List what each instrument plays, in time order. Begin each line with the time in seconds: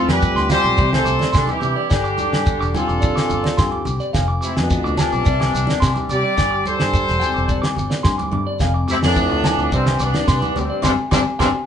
Already playing: steel-string acoustic guitar F2 A3 C4
0.08 fingered electric bass F2, trombone G3, horn section G4 B4, snare, low agogo
0.22 steel-string acoustic guitar F3, kick, shekere
0.36 fingered electric bass D2, clean electric guitar C6, snare, shekere
0.49 trombone G3, steel-string acoustic guitar C4, horn section G4 C5, clean electric guitar F5, snare, high conga, low conga, low agogo, shekere
0.63 fingered electric bass B1, clean electric guitar C6, shekere
0.77 fingered electric bass C2, steel-string acoustic guitar C3 G3, clean electric guitar D5, kick, shekere
0.81 steel-string acoustic guitar D4 G4
0.92 trombone A3, horn section A4 C5, snare, low agogo
1.05 fingered electric bass C2, clean electric guitar D6, low conga, shekere
1.10 steel-string acoustic guitar D4
1.19 clean electric guitar D5, snare, high conga, shekere
1.32 fingered electric bass C3, trombone D3, steel-string acoustic guitar G3, horn section A4, clean electric guitar C6, kick, snare, low agogo, shekere
1.37 horn section D4
1.47 trombone E3, horn section E4 G4, clean electric guitar D6, high conga, shekere
1.60 fingered electric bass C3, steel-string acoustic guitar D4, clean electric guitar D6, low conga, shekere
1.76 clean electric guitar D5
1.90 fingered electric bass G1, steel-string acoustic guitar G2, trombone D3, horn section D4 G4, clean electric guitar D5, kick, snare, low agogo, shekere
2.04 clean electric guitar D6, shekere
2.18 steel-string acoustic guitar G3, clean electric guitar D6, high conga, shekere
2.33 fingered electric bass G2, snare, low agogo
2.46 steel-string acoustic guitar D3, kick, low conga, shekere
2.61 fingered electric bass E1, clean electric guitar D6, shekere
2.74 trombone D3, steel-string acoustic guitar C4, horn section F4 A4, clean electric guitar G5, high conga, low conga, low agogo, shekere
2.88 fingered electric bass E1, clean electric guitar D6, shekere
3.01 steel-string acoustic guitar D3, clean electric guitar D5, kick, high conga, shekere
3.16 clean electric guitar D6, snare, low agogo, shekere
3.29 fingered electric bass G1, steel-string acoustic guitar G3, clean electric guitar D6, low conga, shekere
3.43 clean electric guitar D5, snare, high conga
3.57 fingered electric bass G2, steel-string acoustic guitar G4, clean electric guitar C6, kick, snare, low agogo, shekere
3.72 clean electric guitar D6, high conga
3.85 fingered electric bass C2, clean electric guitar D6, low conga, shekere
4.00 clean electric guitar D5, shekere
4.13 fingered electric bass F1, steel-string acoustic guitar F2, clean electric guitar F5, kick, snare, low agogo, shekere
4.28 clean electric guitar D6
4.41 trombone C3, steel-string acoustic guitar A3, horn section C4 E4, clean electric guitar D6, shekere
4.56 fingered electric bass F2, trombone B2, horn section B3 D4, snare, low agogo
4.70 steel-string acoustic guitar F3, kick, shekere
4.84 fingered electric bass D2, clean electric guitar D6, shekere
4.97 trombone G2, horn section G3 D4, steel-string acoustic guitar C4, clean electric guitar A5, snare, high conga, low conga, low agogo, shekere
5.12 fingered electric bass B1, clean electric guitar D6, shekere
5.24 fingered electric bass C2, steel-string acoustic guitar C3, clean electric guitar D5, kick, shekere
5.40 clean electric guitar D6, snare, low agogo
5.54 fingered electric bass C2, steel-string acoustic guitar D4, clean electric guitar D6, low conga, shekere
5.67 clean electric guitar D5, snare, high conga, shekere
5.80 fingered electric bass C3, steel-string acoustic guitar G3, clean electric guitar C6, kick, snare, low agogo, shekere
5.95 clean electric guitar D6, high conga, shekere
6.09 fingered electric bass C3, trombone G3, steel-string acoustic guitar G4, horn section G4 D5, clean electric guitar D6, low conga, shekere
6.24 clean electric guitar D5
6.36 fingered electric bass G1, steel-string acoustic guitar G2, muted clean electric guitar stroke, kick, snare, low agogo, shekere
6.51 clean electric guitar D6
6.64 steel-string acoustic guitar G3, trombone G3, horn section A4 C5, clean electric guitar D6, high conga, shekere
6.80 fingered electric bass G2, snare, low agogo
6.93 steel-string acoustic guitar D3, kick, shekere
7.08 fingered electric bass E1, snare, shekere
7.20 steel-string acoustic guitar C4, clean electric guitar G5, high conga, low agogo, shekere
7.34 fingered electric bass E1, clean electric guitar D6, shekere
7.48 steel-string acoustic guitar D3, clean electric guitar D5, kick, shekere
7.62 clean electric guitar D6, snare, low agogo
7.76 fingered electric bass G1, steel-string acoustic guitar G3, clean electric guitar D6, low conga, shekere
7.90 clean electric guitar D5, snare, shekere
8.03 fingered electric bass G2, steel-string acoustic guitar A2, clean electric guitar C6, kick, snare, low agogo, shekere
8.18 clean electric guitar D6, high conga, shekere
8.31 steel-string acoustic guitar G2, fingered electric bass G2, clean electric guitar D6, low conga
8.47 clean electric guitar D5
8.59 fingered electric bass F1, steel-string acoustic guitar F2, clean electric guitar F5, kick, snare, low agogo, shekere
8.74 clean electric guitar D6
8.88 trombone C3, steel-string acoustic guitar A3, horn section C4 E4, clean electric guitar D6, high conga, shekere
9.03 fingered electric bass F2, trombone A2, horn section B3 D4, snare, low agogo
9.16 steel-string acoustic guitar F3, kick, shekere
9.30 fingered electric bass D2, muted clean electric guitar stroke, shekere
9.44 steel-string acoustic guitar C4, clean electric guitar A5, snare, high conga, low conga, low agogo, shekere
9.58 fingered electric bass D2, clean electric guitar D6, shekere
9.72 fingered electric bass C2, trombone G2, steel-string acoustic guitar C3, horn section G3 C4, clean electric guitar D5, kick, shekere
9.86 muted clean electric guitar stroke, snare, low agogo
9.99 fingered electric bass C2, trombone G2, horn section B3 D4, steel-string acoustic guitar D4, clean electric guitar D6, low conga, shekere
10.14 clean electric guitar D5, snare, high conga, shekere
10.27 fingered electric bass C3, steel-string acoustic guitar G3, clean electric guitar C6, kick, snare, low agogo, shekere
10.42 clean electric guitar D6, high conga, shekere
10.56 fingered electric bass D2, trombone G2, horn section G3 C4, steel-string acoustic guitar G4, clean electric guitar D6, low conga, shekere
10.70 clean electric guitar D5
10.82 fingered electric bass G1, steel-string acoustic guitar C3 D3 G3, horn section G3 C4 D4, clean electric guitar G5 C6 D6, kick, snare, low conga, low agogo, shekere
10.86 trombone G2
11.11 fingered electric bass G1, trombone G2, steel-string acoustic guitar C3 D3 G3, horn section G3 C4 D4, clean electric guitar G5 C6 D6, kick, snare, low conga, low agogo, shekere
11.39 fingered electric bass G1, trombone G2, steel-string acoustic guitar C3 D3 G3, horn section G3 C4 D4, clean electric guitar G5 C6 D6, kick, snare, low conga, low agogo, shekere